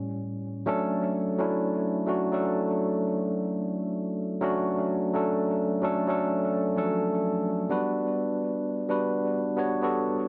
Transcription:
0.00 0.63 A2 medium
0.00 0.63 G3 medium
0.00 0.63 C#4 medium
0.66 1.25 F#3 loud
0.66 1.25 A3 loud
0.66 1.26 C#4 loud
0.66 1.26 D4 loud
0.66 1.26 A4 loud
1.38 1.95 F#3 medium
1.38 1.96 A3 medium
1.38 1.96 C#4 medium
1.38 1.96 D4 medium
1.38 1.97 E4 loud
2.06 2.28 F#3 medium
2.06 2.28 A3 medium
2.06 2.28 C#4 medium
2.06 2.29 D4 medium
2.06 2.29 F#4 loud
2.32 3.85 F#3 medium
2.32 3.85 A3 medium
2.32 3.85 C#4 medium
2.32 3.86 D4 medium
2.32 3.86 A4 loud
4.41 5.00 F#3 loud
4.41 5.00 A3 loud
4.41 5.01 C#4 loud
4.41 5.01 D4 loud
4.41 5.01 F#4 loud
5.13 5.71 F#3 loud
5.13 5.71 A3 medium
5.13 5.71 C#4 medium
5.13 5.71 D4 medium
5.13 5.72 A4 loud
5.82 6.03 F#3 medium
5.82 6.03 A3 medium
5.82 6.04 C#4 medium
5.82 6.04 D4 medium
5.82 6.04 A4 loud
6.07 6.64 F#3 medium
6.07 6.65 A3 medium
6.07 6.65 C#4 medium
6.07 6.65 D4 medium
6.07 6.66 A4 loud
6.76 6.83 F3 medium
6.76 7.55 A3 medium
6.76 7.55 C#4 medium
6.76 7.55 D4 medium
6.76 7.55 A4 loud
6.82 7.57 F#3 medium
7.69 8.66 G3 medium
7.69 8.66 B3 medium
7.69 8.67 D4 medium
7.69 8.67 F#4 medium
7.69 8.67 B4 loud
8.88 9.46 G3 loud
8.88 9.46 B3 medium
8.88 9.46 D4 medium
8.88 9.46 F#4 medium
8.88 9.47 B4 loud
9.57 9.78 G3 medium
9.57 9.78 B3 medium
9.57 9.78 D4 medium
9.57 9.79 F#4 medium
9.57 9.79 C#5 loud
9.82 10.28 G3 medium
9.82 10.28 B3 medium
9.82 10.28 D4 medium
9.82 10.28 F#4 medium
9.82 10.28 A4 loud

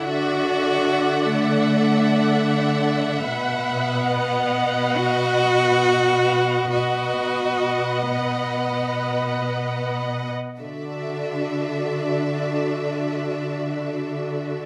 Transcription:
0.04 3.24 D3 soft
0.04 1.27 F#4 medium
0.04 3.25 A4 soft
0.04 3.25 D5 soft
0.04 4.08 E5 soft
0.04 3.25 F#5 soft
1.26 2.87 A3 medium
3.27 6.70 B2 soft
3.27 6.69 B4 soft
3.27 6.69 F#5 soft
3.27 6.70 F#5 soft
3.69 4.98 B3 medium
4.12 6.73 D#5 soft
4.97 6.72 F#4 medium
6.73 10.30 B2 soft
6.73 8.07 F#4 medium
6.73 10.31 B4 soft
6.73 10.30 D#5 soft
6.73 10.31 D#5 soft
6.73 10.31 F#5 soft
8.10 10.03 B3 soft
10.60 14.61 D3 soft
10.60 14.62 D4 soft
10.60 14.62 F#4 soft
10.60 14.62 A4 soft
10.60 14.62 D5 soft
10.60 14.62 E5 soft

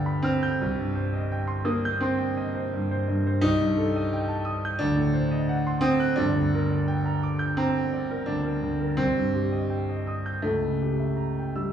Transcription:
0.00 0.56 G1 medium
0.00 0.62 D2 medium
0.00 0.23 D4 loud
0.00 0.61 B4 medium
0.00 0.62 F5 medium
0.00 0.17 G5 medium
0.06 0.35 B5 medium
0.23 1.65 C4 loud
0.23 0.53 F6 medium
0.43 0.60 G6 medium
0.61 3.37 C2 medium
0.78 1.06 G2 medium
0.95 1.23 C5 medium
1.13 1.41 D#5 medium
1.32 1.59 G5 medium
1.47 1.76 C6 medium
1.65 2.01 A#3 loud
1.65 1.94 D#6 medium
1.85 2.13 G6 medium
2.01 2.71 C4 loud
2.01 2.30 C6 medium
2.18 2.46 G5 medium
2.37 2.64 D#5 medium
2.55 2.82 C5 medium
2.73 3.00 G2 medium
2.91 3.18 C5 medium
3.08 3.35 G2 medium
3.27 3.42 C5 medium
3.41 4.77 C2 medium
3.41 4.80 D#4 loud
3.61 3.87 G2 medium
3.77 4.04 A4 medium
3.96 4.22 D#5 medium
4.13 4.39 G5 medium
4.28 4.56 A5 medium
4.45 4.73 D#6 medium
4.65 4.81 G6 medium
4.79 6.16 D2 medium
4.79 5.84 D4 loud
4.97 5.24 A2 medium
5.14 5.42 C5 medium
5.31 5.59 D#5 medium
5.49 5.77 F#5 medium
5.67 5.95 C6 medium
5.81 6.18 C4 loud
5.81 6.11 D#6 medium
6.00 6.19 F#6 medium
6.16 8.94 G1 medium
6.16 7.56 D4 loud
6.35 6.64 D2 medium
6.55 6.83 A#4 medium
6.70 6.99 D5 medium
6.88 7.16 G5 medium
7.06 7.34 A#5 medium
7.23 7.51 D6 medium
7.39 7.67 G6 medium
7.57 8.27 C4 loud
7.57 7.85 A#5 medium
7.78 8.04 G5 medium
7.93 8.21 D5 medium
8.11 8.39 A#4 medium
8.26 8.56 D2 medium
8.26 8.98 D4 loud
8.45 8.74 A#4 medium
8.62 8.91 D2 medium
8.81 8.99 A#4 medium
8.97 10.37 C2 medium
8.97 10.41 C4 loud
9.17 9.46 G2 medium
9.35 9.63 G4 medium
9.52 9.81 D#5 medium
9.70 9.99 G5 medium
9.89 10.17 D#5 medium
10.07 10.35 D#6 medium
10.26 10.43 G6 medium
10.42 11.73 C#2 medium
10.42 11.55 A3 loud
10.63 10.91 C#3 medium
10.82 11.10 G4 medium
11.00 11.29 E5 medium
11.17 11.47 A#5 medium
11.39 11.68 G5 soft
11.55 11.73 G3 medium
11.55 11.73 E6 medium

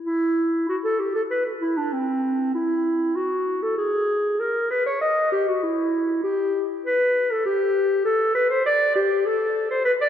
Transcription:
0.04 0.64 E4 medium
0.69 0.76 F#4 medium
0.84 1.01 A4 medium
1.00 1.15 G4 medium
1.15 1.22 A4 medium
1.30 1.44 B4 medium
1.61 1.79 E4 medium
1.77 1.94 D4 medium
1.93 2.54 C4 medium
2.55 3.18 E4 medium
3.16 3.64 F#4 medium
3.63 3.77 A4 medium
3.78 4.41 G#4 medium
4.40 4.70 A#4 medium
4.71 4.85 B4 medium
4.86 5.01 C#5 medium
5.01 5.31 D#5 medium
5.32 5.50 G4 medium
5.48 5.65 F#4 medium
5.63 6.23 E4 medium
6.24 6.63 G4 medium
6.86 7.32 B4 medium
7.31 7.45 A4 medium
7.46 8.05 G4 medium
8.05 8.34 A4 medium
8.35 8.49 B4 medium
8.50 8.65 C5 medium
8.66 8.95 D5 medium
8.96 9.27 G4 medium
9.26 9.70 A4 medium
9.71 9.84 C5 medium
9.85 9.92 B4 medium
10.01 10.08 D5 medium

